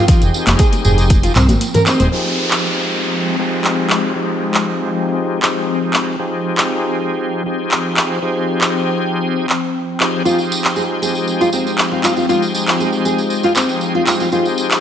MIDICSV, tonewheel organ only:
0, 0, Header, 1, 2, 480
1, 0, Start_track
1, 0, Key_signature, -4, "minor"
1, 0, Tempo, 508475
1, 82, Time_signature, 4, 2, 24, 8
1, 13973, End_track
2, 0, Start_track
2, 0, Title_t, "Tonewheel organ"
2, 0, Program_c, 0, 16
2, 81, Note_on_c, 0, 63, 85
2, 81, Note_on_c, 0, 68, 75
2, 82, Note_on_c, 0, 67, 77
2, 82, Note_on_c, 0, 72, 91
2, 1254, Note_off_c, 0, 63, 0
2, 1254, Note_off_c, 0, 67, 0
2, 1254, Note_off_c, 0, 68, 0
2, 1254, Note_off_c, 0, 72, 0
2, 1761, Note_on_c, 0, 67, 74
2, 1761, Note_on_c, 0, 68, 72
2, 1762, Note_on_c, 0, 63, 84
2, 1762, Note_on_c, 0, 72, 93
2, 1974, Note_off_c, 0, 63, 0
2, 1974, Note_off_c, 0, 67, 0
2, 1974, Note_off_c, 0, 68, 0
2, 1974, Note_off_c, 0, 72, 0
2, 2000, Note_on_c, 0, 68, 67
2, 2000, Note_on_c, 0, 72, 84
2, 2001, Note_on_c, 0, 53, 74
2, 2001, Note_on_c, 0, 63, 68
2, 2001, Note_on_c, 0, 67, 69
2, 3174, Note_off_c, 0, 53, 0
2, 3174, Note_off_c, 0, 63, 0
2, 3174, Note_off_c, 0, 67, 0
2, 3174, Note_off_c, 0, 68, 0
2, 3174, Note_off_c, 0, 72, 0
2, 3201, Note_on_c, 0, 63, 61
2, 3201, Note_on_c, 0, 68, 64
2, 3201, Note_on_c, 0, 72, 74
2, 3202, Note_on_c, 0, 53, 65
2, 3202, Note_on_c, 0, 67, 60
2, 3894, Note_off_c, 0, 53, 0
2, 3894, Note_off_c, 0, 63, 0
2, 3894, Note_off_c, 0, 68, 0
2, 3894, Note_off_c, 0, 72, 0
2, 3895, Note_off_c, 0, 67, 0
2, 3922, Note_on_c, 0, 53, 74
2, 3922, Note_on_c, 0, 63, 71
2, 3922, Note_on_c, 0, 67, 70
2, 3922, Note_on_c, 0, 68, 65
2, 3922, Note_on_c, 0, 72, 85
2, 5094, Note_off_c, 0, 53, 0
2, 5095, Note_off_c, 0, 63, 0
2, 5095, Note_off_c, 0, 67, 0
2, 5095, Note_off_c, 0, 68, 0
2, 5095, Note_off_c, 0, 72, 0
2, 5123, Note_on_c, 0, 63, 60
2, 5124, Note_on_c, 0, 53, 67
2, 5124, Note_on_c, 0, 67, 63
2, 5124, Note_on_c, 0, 68, 60
2, 5124, Note_on_c, 0, 72, 75
2, 5815, Note_off_c, 0, 63, 0
2, 5815, Note_off_c, 0, 68, 0
2, 5815, Note_off_c, 0, 72, 0
2, 5816, Note_off_c, 0, 53, 0
2, 5816, Note_off_c, 0, 67, 0
2, 5843, Note_on_c, 0, 53, 76
2, 5843, Note_on_c, 0, 63, 67
2, 5843, Note_on_c, 0, 67, 71
2, 5843, Note_on_c, 0, 68, 70
2, 5844, Note_on_c, 0, 72, 84
2, 7015, Note_off_c, 0, 53, 0
2, 7015, Note_off_c, 0, 63, 0
2, 7015, Note_off_c, 0, 67, 0
2, 7015, Note_off_c, 0, 68, 0
2, 7016, Note_off_c, 0, 72, 0
2, 7042, Note_on_c, 0, 53, 65
2, 7042, Note_on_c, 0, 63, 61
2, 7042, Note_on_c, 0, 67, 61
2, 7042, Note_on_c, 0, 68, 61
2, 7042, Note_on_c, 0, 72, 70
2, 7735, Note_off_c, 0, 53, 0
2, 7735, Note_off_c, 0, 63, 0
2, 7735, Note_off_c, 0, 67, 0
2, 7735, Note_off_c, 0, 68, 0
2, 7735, Note_off_c, 0, 72, 0
2, 7760, Note_on_c, 0, 63, 66
2, 7760, Note_on_c, 0, 67, 68
2, 7760, Note_on_c, 0, 72, 82
2, 7761, Note_on_c, 0, 53, 76
2, 7761, Note_on_c, 0, 68, 70
2, 8934, Note_off_c, 0, 53, 0
2, 8934, Note_off_c, 0, 63, 0
2, 8934, Note_off_c, 0, 67, 0
2, 8934, Note_off_c, 0, 68, 0
2, 8934, Note_off_c, 0, 72, 0
2, 9443, Note_on_c, 0, 53, 71
2, 9443, Note_on_c, 0, 63, 67
2, 9443, Note_on_c, 0, 67, 68
2, 9443, Note_on_c, 0, 68, 62
2, 9443, Note_on_c, 0, 72, 82
2, 9655, Note_off_c, 0, 53, 0
2, 9655, Note_off_c, 0, 63, 0
2, 9655, Note_off_c, 0, 67, 0
2, 9655, Note_off_c, 0, 68, 0
2, 9655, Note_off_c, 0, 72, 0
2, 9682, Note_on_c, 0, 63, 66
2, 9682, Note_on_c, 0, 72, 81
2, 9683, Note_on_c, 0, 53, 74
2, 9683, Note_on_c, 0, 67, 71
2, 9683, Note_on_c, 0, 68, 70
2, 10855, Note_off_c, 0, 53, 0
2, 10855, Note_off_c, 0, 63, 0
2, 10855, Note_off_c, 0, 67, 0
2, 10855, Note_off_c, 0, 68, 0
2, 10855, Note_off_c, 0, 72, 0
2, 10885, Note_on_c, 0, 53, 68
2, 10885, Note_on_c, 0, 63, 65
2, 10885, Note_on_c, 0, 68, 63
2, 10886, Note_on_c, 0, 67, 60
2, 10886, Note_on_c, 0, 72, 71
2, 11576, Note_off_c, 0, 53, 0
2, 11576, Note_off_c, 0, 63, 0
2, 11576, Note_off_c, 0, 67, 0
2, 11576, Note_off_c, 0, 68, 0
2, 11576, Note_off_c, 0, 72, 0
2, 11603, Note_on_c, 0, 68, 70
2, 11604, Note_on_c, 0, 53, 80
2, 11604, Note_on_c, 0, 63, 69
2, 11604, Note_on_c, 0, 67, 68
2, 11604, Note_on_c, 0, 72, 82
2, 12775, Note_off_c, 0, 68, 0
2, 12776, Note_off_c, 0, 53, 0
2, 12776, Note_off_c, 0, 63, 0
2, 12776, Note_off_c, 0, 67, 0
2, 12776, Note_off_c, 0, 72, 0
2, 12803, Note_on_c, 0, 63, 64
2, 12803, Note_on_c, 0, 67, 63
2, 12803, Note_on_c, 0, 68, 62
2, 12804, Note_on_c, 0, 53, 68
2, 12804, Note_on_c, 0, 72, 79
2, 13495, Note_off_c, 0, 63, 0
2, 13495, Note_off_c, 0, 67, 0
2, 13495, Note_off_c, 0, 68, 0
2, 13496, Note_off_c, 0, 53, 0
2, 13496, Note_off_c, 0, 72, 0
2, 13523, Note_on_c, 0, 53, 77
2, 13523, Note_on_c, 0, 63, 73
2, 13523, Note_on_c, 0, 67, 72
2, 13523, Note_on_c, 0, 68, 73
2, 13523, Note_on_c, 0, 72, 87
2, 13973, Note_off_c, 0, 53, 0
2, 13973, Note_off_c, 0, 63, 0
2, 13973, Note_off_c, 0, 67, 0
2, 13973, Note_off_c, 0, 68, 0
2, 13973, Note_off_c, 0, 72, 0
2, 13973, End_track
0, 0, End_of_file